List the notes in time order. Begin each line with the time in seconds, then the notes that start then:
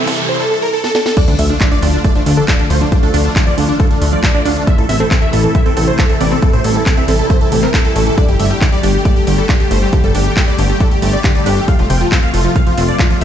Already playing: C3 E3 G3 E4, riser
0.07 C4 A4, kick, open hi-hat
0.18 C3 E3 G3 E4 A4
0.29 C5
0.40 A4
0.51 A4
0.62 A#4
0.73 A4
0.84 A4, snare
0.95 A4, snare
1.06 A4, snare
1.17 D3 F3 A3 D4 F4 D5, kick, closed hi-hat, crash, sub drop
1.28 D2 D4, closed hi-hat
1.39 D2 D3 F3 A3 F4 E5, open hi-hat
1.50 F3 D4, closed hi-hat
1.61 D3 F3 A3 D4 F4, kick, clap, closed hi-hat
1.71 D3 F3 A3 D4 F4 D5, closed hi-hat
1.82 D2 D4, open hi-hat
1.93 D3 F3 A3 D4 F4, closed hi-hat
2.04 D3 F3 A3 F4 D5, kick, closed hi-hat
2.15 F3 D4, closed hi-hat
2.26 D2 D3 F3 A3 D4 F4, open hi-hat
2.37 D4 A4, closed hi-hat
2.48 D3 F3 A3 D4 F4, kick, clap, closed hi-hat
2.59 D3 F3 A3 D4 F4, closed hi-hat
2.70 D2 A3 C5, open hi-hat
2.81 D3 F3 A3 D4 F4, closed hi-hat
2.92 D3 F3 A3 D4 F4, kick, closed hi-hat
3.03 D2 D4 A4, closed hi-hat
3.14 D2 D3 F3 A3 D4 F4, open hi-hat
3.25 D4, closed hi-hat
3.36 D3 F3 A3 D4 F4, kick, clap, closed hi-hat
3.47 D3 F3 A3 F4 D5, closed hi-hat
3.58 D2 D3 D4, open hi-hat
3.69 D3 F3 A3 D4 F4, closed hi-hat
3.80 D3 F3 A3 D4 F4 A4, kick, closed hi-hat
3.91 D4, closed hi-hat
4.02 D2 D3 F3 A3 D4 F4, open hi-hat
4.13 F3 D5, closed hi-hat
4.23 D3 F3 A3 D4 F4, kick, clap, closed hi-hat
4.34 D3 F3 A3 D4 F4 D5, closed hi-hat
4.45 D2 D4, open hi-hat
4.56 D3 F3 A3 D4 F4, closed hi-hat
4.67 C3 E3 A3 E4 E5, kick, closed hi-hat
4.78 A1 E3 A4, closed hi-hat
4.89 A1 C3 E3 A3 E4 E5, open hi-hat
5.00 C4 A4, closed hi-hat
5.11 C3 E3 A3 C4 E4 A4, kick, clap, closed hi-hat
5.22 C3 E3 A3 E4 E5, closed hi-hat
5.33 A1 A3 A4, open hi-hat
5.44 C3 E3 A3 E4 A4, closed hi-hat
5.55 C3 E3 A3 E4 E5, kick, closed hi-hat
5.66 C4 A4, closed hi-hat
5.77 A1 C3 E3 A3 C4 E4 A4, open hi-hat
5.87 C5, closed hi-hat
5.99 C3 E3 A3 E4 A4, kick, clap, closed hi-hat
6.09 C3 E3 A3 E4 A4, closed hi-hat
6.20 A1 C3 D5, open hi-hat
6.31 C3 E3 A3 C4 E4 A4, closed hi-hat
6.42 C3 E3 G3 C4 E4 A4, kick, closed hi-hat
6.53 A1 C5, closed hi-hat
6.64 A1 C3 E3 G3 A3 E4 A4, open hi-hat
6.75 E3 A4, closed hi-hat
6.86 C3 E3 G3 E4 A4, kick, clap, closed hi-hat
6.97 C3 E3 G3 C4 E4 E5, closed hi-hat
7.08 A1 C4 A4, open hi-hat
7.19 C3 E3 G3 E4 A4, closed hi-hat
7.30 C3 E3 G3 A3 E4 C5, kick, closed hi-hat
7.41 E3 A4, closed hi-hat
7.52 A1 C3 E3 G3 E4 A4, open hi-hat
7.63 C4 A#4, clap, closed hi-hat
7.74 C3 E3 G3 C4 E4 A4, kick, clap, closed hi-hat
7.85 C3 E3 G3 E4 A4, closed hi-hat
7.96 A1 A3 A4, open hi-hat
8.07 C3 E3 G3 E4 A4, closed hi-hat
8.17 D3 G3 A3 D4 G4 D5, kick, closed hi-hat
8.29 G1 G4, closed hi-hat
8.39 G1 D3 G3 A3 G4 E5, open hi-hat
8.50 G3 G4, closed hi-hat
8.61 D3 G3 A3 G4, kick, clap, closed hi-hat
8.72 D3 G3 A3 G4 D5, closed hi-hat
8.83 G1 D4 G4, open hi-hat
8.94 D3 G3 A3 G4, closed hi-hat
9.05 D3 G3 A3 G4 D5, kick, closed hi-hat
9.16 G3 G4, closed hi-hat
9.27 G1 D3 G3 A3 G4, open hi-hat
9.38 G3 A4, closed hi-hat
9.49 D3 G3 A3 D4 G4, kick, clap, closed hi-hat
9.60 D3 G3 A3 G4, closed hi-hat
9.71 G1 A3 C5, open hi-hat
9.82 D3 G3 A3 G4, closed hi-hat
9.93 D3 G3 A3 G4, kick, closed hi-hat
10.04 G1 G3 A4, closed hi-hat
10.15 G1 D3 G3 A3 D4 G4, open hi-hat
10.26 G4, closed hi-hat
10.37 D3 G3 A3 G4, kick, clap, closed hi-hat
10.48 D3 G3 A3 G4 D5, closed hi-hat
10.58 G1 D3 G4, open hi-hat
10.69 D3 G3 A3 G4, closed hi-hat
10.80 D3 G3 A3 D4 G4 A4, kick, closed hi-hat
10.91 G4, closed hi-hat
11.02 G1 D3 G3 A3 G4, open hi-hat
11.13 G3 D5, closed hi-hat
11.24 D3 G3 A3 G4, kick, clap, closed hi-hat
11.35 D3 G3 A3 G4 D5, closed hi-hat
11.46 G1 D4 G4, open hi-hat
11.57 D3 G3 A3 G4, closed hi-hat
11.68 C3 F3 A3 F4 F5, kick, closed hi-hat
11.79 F1 F3 F4, closed hi-hat
11.90 F1 C3 F3 A3 F4 G5, open hi-hat
12.01 F3 F4, closed hi-hat
12.12 C3 F3 A3 C4 F4, kick, clap, closed hi-hat
12.23 C3 F3 A3 F4 F5, closed hi-hat
12.34 F1 A3 F4, open hi-hat
12.45 C3 F3 A3 F4, closed hi-hat
12.56 C3 F3 A3 F4 F5, kick, closed hi-hat
12.66 F3 F4, closed hi-hat
12.77 F1 C3 F3 A3 C4 F4, open hi-hat
12.88 D5, closed hi-hat
12.99 C3 F3 A3 F4, kick, clap, closed hi-hat
13.10 C3 F3 A3 F4, closed hi-hat